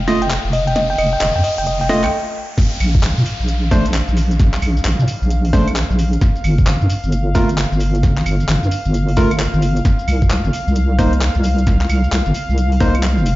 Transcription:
Already playing: wobble bass F1, analog synth pad F5, riser
0.08 synth stab A3 F4 D#5, fm electric piano D#5, kick, snare, open hi-hat
0.22 fm electric piano G5, closed hi-hat
0.30 clap, closed hi-hat
0.45 wobble bass F1
0.53 fm electric piano D#5, open hi-hat
0.67 fm electric piano G5, closed hi-hat
0.76 fm electric piano D#5, kick, snare, closed hi-hat, noise sweep
0.90 fm electric piano G5
0.98 wobble bass F1, fm electric piano D#5, open hi-hat, claves
1.13 fm electric piano G5
1.21 wobble bass F1, fm electric piano D#5, clap, closed hi-hat
1.36 wobble bass F2, fm electric piano G5
1.44 fm electric piano D#5, open hi-hat
1.58 wobble bass F1, fm electric piano G5, kick, closed hi-hat
1.67 fm electric piano D#5, closed hi-hat
1.81 fm electric piano G5, open hi-hat
1.89 synth stab A3 F4 D#5, fm electric piano D#5, kick, snare, open hi-hat
2.04 wobble bass C2, fm electric piano G5, clap, closed hi-hat, claves
2.58 analog synth pad F5, kick, snare, closed hi-hat, crash, downlifter, maracas
2.73 maracas
2.80 wobble bass A#1, open hi-hat, claves, maracas
2.95 kick, maracas
3.03 wobble bass A#1, clap, closed hi-hat, maracas
3.17 wobble bass A#2, maracas
3.25 open hi-hat, maracas
3.40 wobble bass A#1, maracas
3.48 closed hi-hat, maracas
3.71 synth stab A3 D4 C5, kick, snare, open hi-hat, maracas
3.85 closed hi-hat, maracas
3.94 clap, closed hi-hat, maracas
4.08 wobble bass A#1, maracas
4.17 open hi-hat, maracas
4.31 closed hi-hat, maracas
4.39 kick, snare, closed hi-hat, maracas
4.54 clap, maracas
4.62 wobble bass A#1, open hi-hat, claves, maracas
4.77 maracas
4.84 wobble bass A#1, clap, closed hi-hat, maracas
4.99 wobble bass A#2, maracas
5.08 open hi-hat, maracas
5.22 wobble bass A#1, maracas
5.30 closed hi-hat, maracas
5.45 open hi-hat
5.53 synth stab A3 D4 C5, kick, snare, open hi-hat, maracas
5.68 closed hi-hat, claves, maracas
5.76 clap, closed hi-hat, maracas
5.90 wobble bass A#1, maracas
5.99 open hi-hat, maracas
6.13 closed hi-hat, maracas
6.21 kick, snare, closed hi-hat, maracas
6.36 maracas
6.44 wobble bass G1, open hi-hat, claves, maracas
6.58 kick, maracas
6.67 wobble bass G1, clap, closed hi-hat, maracas
6.81 wobble bass G2, maracas
6.90 open hi-hat, maracas
7.03 wobble bass G1, maracas
7.12 closed hi-hat, maracas
7.35 synth stab A3 F4 A#4, kick, snare, open hi-hat, maracas
7.49 closed hi-hat, maracas
7.58 clap, closed hi-hat, maracas
7.72 wobble bass G1, maracas
7.80 open hi-hat, maracas
7.95 closed hi-hat, maracas
8.03 kick, snare, closed hi-hat, maracas
8.18 clap, maracas
8.26 wobble bass G1, open hi-hat, claves, maracas
8.40 maracas
8.48 wobble bass G1, clap, closed hi-hat, maracas
8.63 wobble bass G2, maracas
8.71 open hi-hat, maracas
8.85 wobble bass G1, maracas
8.94 closed hi-hat, maracas
9.08 open hi-hat
9.17 synth stab A3 F4 A#4, kick, snare, open hi-hat, maracas
9.31 closed hi-hat, claves, maracas
9.40 clap, closed hi-hat, maracas
9.54 wobble bass G1, maracas
9.62 open hi-hat, maracas
9.76 closed hi-hat, maracas
9.85 kick, snare, closed hi-hat, maracas
9.99 maracas
10.08 wobble bass C2, open hi-hat, claves, maracas
10.22 kick, maracas
10.30 wobble bass C2, clap, closed hi-hat, maracas
10.44 wobble bass G1, maracas
10.53 open hi-hat, maracas
10.67 wobble bass C2, maracas
10.75 closed hi-hat, maracas
10.99 synth stab A#3 D#4 C5, kick, snare, open hi-hat, maracas
11.13 closed hi-hat, maracas
11.21 clap, closed hi-hat, maracas
11.35 wobble bass C2, maracas
11.43 open hi-hat, maracas
11.58 closed hi-hat, maracas
11.67 kick, snare, closed hi-hat, maracas
11.81 clap, maracas
11.89 wobble bass C2, open hi-hat, claves, maracas
12.04 maracas
12.12 wobble bass C2, clap, closed hi-hat, maracas
12.26 wobble bass G1, maracas
12.34 open hi-hat, maracas
12.49 wobble bass C2, maracas
12.58 closed hi-hat, maracas
12.72 open hi-hat
12.80 synth stab A#3 D#4 C5, kick, snare, open hi-hat, maracas
12.94 closed hi-hat, claves, maracas
13.03 clap, closed hi-hat, maracas
13.17 wobble bass F1, maracas
13.26 open hi-hat, maracas

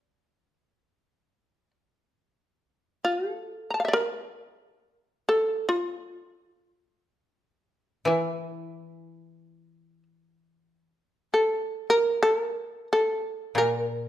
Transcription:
Already playing: shamisen D5
3.05 shamisen F4
3.32 shamisen A4
3.71 shamisen A5 A#5
3.80 shamisen F5
3.85 shamisen D5 E5
3.93 shamisen A#4
5.29 shamisen A4
5.69 shamisen F4
8.05 koto E3, shamisen E4
11.34 shamisen A4
11.90 shamisen A#4
12.23 shamisen A4
12.39 shamisen A#4
12.93 shamisen A4
13.55 koto A#2, shamisen A#4

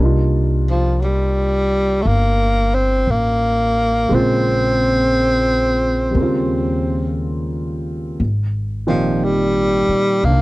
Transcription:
Already playing: grand piano G3 A#3
0.00 upright bass C2, grand piano D4 D#4
0.05 grand piano F4
0.70 tenor saxophone F3
1.01 tenor saxophone F#3 G3
2.02 upright bass G1, tenor saxophone A3
2.08 tenor saxophone A#3
2.74 tenor saxophone C4
3.07 upright bass A1, tenor saxophone A#3
4.09 upright bass A#1, grand piano G#3 A#3 C4
4.13 grand piano C#3 F4, tenor saxophone C4
6.11 upright bass D#2, grand piano G3 A#3
6.17 grand piano C#3 C4
6.22 grand piano F4
8.20 upright bass G#1
8.87 grand piano A#2 D#3 C4 D#4 G4, tenor saxophone F3
9.24 tenor saxophone G3
9.88 muted upright bass stroke
10.23 upright bass C2, tenor saxophone A#3, grand piano D4

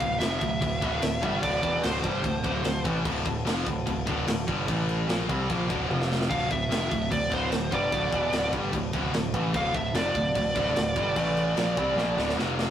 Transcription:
Already playing: string section F3 D4 A4, lead electric guitar F5
0.00 picked electric bass D1, distorted electric guitar D2 A2, kick, crash
0.19 picked electric bass F1, distorted electric guitar F2 C3 F3, lead electric guitar E5, snare, crash
0.41 picked electric bass D1, distorted electric guitar D2 A2, kick, crash
0.61 picked electric bass D1, distorted electric guitar D2 A2, kick, crash
0.81 picked electric bass D1, distorted electric guitar D2 A2 D3, kick, crash
1.02 picked electric bass D1, distorted electric guitar D2 A2, snare, crash
1.21 picked electric bass G1, distorted electric guitar G2 D3 G3, kick, crash
1.42 picked electric bass D1, distorted electric guitar D2 A2 D3, lead electric guitar D5, kick, crash
1.62 picked electric bass E1, distorted electric guitar E2 B2 E3, kick, crash
1.83 picked electric bass D1, distorted electric guitar D2 A2 D3, lead electric guitar C5, snare, crash
2.03 picked electric bass G1, distorted electric guitar G2 D3 G3, kick, crash
2.24 picked electric bass D1, distorted electric guitar D2 A2, string section C4, kick, crash
2.44 picked electric bass D1, distorted electric guitar D2 A2 D3, kick, crash
2.64 picked electric bass D1, distorted electric guitar D2 A2, snare, crash
2.85 picked electric bass A1, distorted electric guitar A2 E3 A3, kick, crash
3.04 picked electric bass D1, distorted electric guitar D2 A2 D3, kick, crash
3.25 picked electric bass D1, distorted electric guitar D2 A2, kick, crash
3.45 picked electric bass F1, distorted electric guitar F2 C3 F3, snare, crash
3.66 picked electric bass D1, distorted electric guitar D2 A2, kick, crash
3.86 picked electric bass D1, distorted electric guitar D2 A2, kick, crash
4.06 picked electric bass D1, distorted electric guitar D2 A2 D3, kick, crash
4.27 picked electric bass D1, distorted electric guitar D2 A2, snare, crash
4.47 picked electric bass G1, distorted electric guitar G2 D3 G3, kick, crash
4.67 picked electric bass A1, distorted electric guitar A2 E3 A3, string section E3 A3, kick, crash
4.89 crash
5.08 picked electric bass A#1, distorted electric guitar A#2 F3 A#3, string section F3 D4 A4, snare, crash
5.29 picked electric bass C2, distorted electric guitar C3 G3 C4, kick, crash
5.49 picked electric bass A#1, distorted electric guitar A#2 F3 A#3, kick, crash
5.68 picked electric bass D1, distorted electric guitar D2 A2 D3, kick, crash
5.89 picked electric bass F1, distorted electric guitar F2 C3 F3, string section C4 C5, high tom
6.02 snare
6.12 snare
6.21 snare
6.29 picked electric bass D1, distorted electric guitar D2 A2 D3, string section D4 A4, lead electric guitar F5, kick, crash
6.51 picked electric bass D1, distorted electric guitar D2 A2, lead electric guitar E5, kick, crash
6.69 picked electric bass F1, distorted electric guitar F2 C3 F3, snare, crash
6.90 picked electric bass D1, distorted electric guitar D2 A2, kick, crash
7.10 picked electric bass D1, distorted electric guitar D2 A2, lead electric guitar D5, kick, crash
7.30 picked electric bass D1, distorted electric guitar D2 A2 D3, lead electric guitar C5, kick, crash
7.52 picked electric bass D1, distorted electric guitar D2 A2, snare, crash
7.71 picked electric bass G1, distorted electric guitar G2 D3 G3, lead electric guitar D5, kick, crash
7.91 picked electric bass D1, distorted electric guitar D2 A2 D3, kick, crash
8.12 picked electric bass E1, distorted electric guitar E2 B2 E3, kick, crash
8.32 picked electric bass D1, distorted electric guitar D2 A2 D3, snare, crash
8.52 picked electric bass G1, distorted electric guitar G2 D3 G3, kick, crash
8.73 picked electric bass D1, distorted electric guitar D2 A2, kick, crash
8.93 picked electric bass D1, distorted electric guitar D2 A2 D3, kick, crash
9.13 picked electric bass D1, distorted electric guitar D2 A2, snare, crash
9.34 picked electric bass A1, distorted electric guitar A2 E3 A3, kick, crash
9.54 picked electric bass D1, distorted electric guitar D2 A2 D3, lead electric guitar F5, kick, crash
9.74 picked electric bass D1, distorted electric guitar D2 A2, lead electric guitar E5, kick, crash
9.93 picked electric bass F1, distorted electric guitar F2 C3 F3, lead electric guitar D5, snare, crash
10.15 picked electric bass D1, distorted electric guitar D2 A2, kick, crash
10.35 picked electric bass D1, distorted electric guitar D2 A2, kick, crash
10.55 picked electric bass D1, distorted electric guitar D2 A2 D3, kick, crash
10.76 picked electric bass D1, distorted electric guitar D2 A2, snare, crash
10.96 picked electric bass G1, distorted electric guitar G2 D3 G3, kick, crash
11.16 picked electric bass A1, distorted electric guitar A2 E3 A3, string section E3 A3, kick, crash
11.37 crash
11.56 picked electric bass A#1, distorted electric guitar A#2 F3 A#3, string section F3 D4, snare, crash
11.76 picked electric bass C2, distorted electric guitar C3 G3 C4, kick, crash
11.96 picked electric bass A#1, distorted electric guitar A#2 F3 A#3, snare
12.16 picked electric bass D1, distorted electric guitar D2 A2 D3, snare
12.29 snare
12.37 picked electric bass F1, distorted electric guitar F2 C3 F3, string section C4 C5, snare
12.59 snare

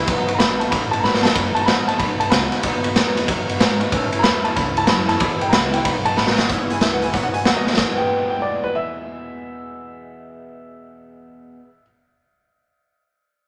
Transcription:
0.07 upright bass B1, steel-string acoustic guitar B2 F#3 B3 D#4 F#4, kick, ride
0.28 steel-string acoustic guitar B3 D#4 F#4, ride
0.35 upright piano A#5 B5
0.39 upright bass A#1, steel-string acoustic guitar B2 F#3 B3 D#4 F#4, snare, ride
0.60 steel-string acoustic guitar B3 D#4 F#4, upright piano A5, ride
0.71 upright bass A1, steel-string acoustic guitar F#3 B3 D#4 F#4, upright piano B5, kick, snare, ride
0.91 steel-string acoustic guitar B3 D#4 F#4, upright piano A5, ride
1.00 upright bass G#1, steel-string acoustic guitar B2, upright piano A#5 B5
1.04 steel-string acoustic guitar F#3 B3 D#4 F#4, snare
1.15 snare
1.23 steel-string acoustic guitar D#4 F#4, upright piano A5, snare
1.28 steel-string acoustic guitar B3
1.35 upright bass F#1, steel-string acoustic guitar B2 F#3 B3 D#4 F#4, upright piano B5, kick, ride
1.55 steel-string acoustic guitar D#4 F#4, upright piano A5, muted upright bass stroke, ride
1.60 steel-string acoustic guitar B3, upright piano A#5
1.66 upright bass A1, steel-string acoustic guitar B2 F#3 B3 D#4 F#4, upright piano B5, snare, ride
1.87 steel-string acoustic guitar B3 D#4 F#4, upright piano A5, ride
1.98 upright bass B1, steel-string acoustic guitar F#3 B3 D#4 F#4, upright piano B5, kick, ride
2.19 steel-string acoustic guitar B3 D#4 F#4, upright piano A5, ride
2.30 upright bass C#2, steel-string acoustic guitar B2 F#3 B3 D#4 F#4, upright piano B5, snare, ride
2.51 steel-string acoustic guitar B3 D#4 F#4, muted upright bass stroke, snare, ride
2.63 upright bass D#2, steel-string acoustic guitar B2 F#3 B3 D#4 F#4, kick, ride
2.84 steel-string acoustic guitar B3 D#4 F#4, ride
2.95 upright bass E2, steel-string acoustic guitar B2 F#3 B3 D#4 F#4, snare, ride
3.16 steel-string acoustic guitar B3 D#4 F#4, snare, ride
3.27 upright bass F#2, steel-string acoustic guitar F#3 B3 D#4 F#4, kick, ride
3.47 steel-string acoustic guitar B3 D#4 F#4, ride
3.59 upright bass G#2, steel-string acoustic guitar B2 F#3 B3 D#4 F#4, snare, ride
3.80 steel-string acoustic guitar B3 D#4 F#4, ride
3.92 steel-string acoustic guitar A2 E3 A3 C#4 E4, upright bass A2, kick, ride
4.12 steel-string acoustic guitar A3 C#4 E4, ride
4.19 steel-string acoustic guitar A2, upright piano A#5 B5
4.24 upright bass E2, steel-string acoustic guitar E3 A3 C#4 E4, snare, ride
4.44 steel-string acoustic guitar A3 C#4 E4, upright piano A5, ride
4.55 upright bass C#2, steel-string acoustic guitar E3 A3 C#4 E4, upright piano B5, kick, snare, ride
4.77 steel-string acoustic guitar A3 C#4 E4, upright piano A5, ride
4.84 upright bass F#2, steel-string acoustic guitar A2 E3, upright piano A#5, snare, ride
4.88 steel-string acoustic guitar A3 C#4 E4, upright piano B5
5.07 steel-string acoustic guitar A3 C#4 E4, upright piano A5, snare, ride
5.19 steel-string acoustic guitar E2 B2 E3 G#3 B3 E4, upright bass E2, upright piano B5, kick, ride
5.41 steel-string acoustic guitar E3 G#3 B3 E4, upright piano G5, ride
5.49 steel-string acoustic guitar E2, upright piano A#5, snare, ride
5.53 upright bass C#2, steel-string acoustic guitar B2 E3 G#3 B3 E4, upright piano B5
5.73 steel-string acoustic guitar E3 G#3 B3 E4, upright piano G5, ride
5.84 upright bass B1, steel-string acoustic guitar F#3 B3 D#4 F#4, upright piano B5, kick, ride
6.05 steel-string acoustic guitar B3 D#4 F#4, upright piano A5, ride
6.16 upright bass A1, steel-string acoustic guitar B2 F#3 B3 D#4 F#4, upright piano B5, snare
6.27 snare
6.37 steel-string acoustic guitar B3 D#4 F#4, snare
6.49 steel-string acoustic guitar E2 B2 E3 B3 E4 G#4, upright bass E2, kick, closed hi-hat
6.69 steel-string acoustic guitar E3 B3 E4 G#4, upright piano G#5, closed hi-hat
6.81 upright bass C#2, steel-string acoustic guitar E2 B2 E3 B3 E4 G#4, upright piano E5, snare, closed hi-hat
6.93 upright piano F#5
7.01 steel-string acoustic guitar E3 B3 E4 G#4, upright piano G#5, closed hi-hat
7.13 upright bass B1, steel-string acoustic guitar F#3 B3 D#4, upright piano F#5, kick, closed hi-hat
7.17 steel-string acoustic guitar F#4
7.23 upright piano F#5
7.33 steel-string acoustic guitar B3 D#4 F#4, upright piano G#5, muted upright bass stroke, closed hi-hat
7.45 upright bass D#2, steel-string acoustic guitar B2 F#3 B3 D#4 F#4, upright piano F#5, snare, closed hi-hat
7.56 upright piano D#5
7.66 steel-string acoustic guitar B3 D#4 F#4, snare
7.73 steel-string acoustic guitar E2, snare
7.77 upright bass E2, steel-string acoustic guitar B2 E3, kick, snare
7.83 steel-string acoustic guitar G#3 B3
7.88 steel-string acoustic guitar G#4
7.93 upright piano F#5
7.97 upright piano G5
8.30 upright piano G5
8.42 upright piano D5
8.64 upright piano B4
8.75 upright piano E5

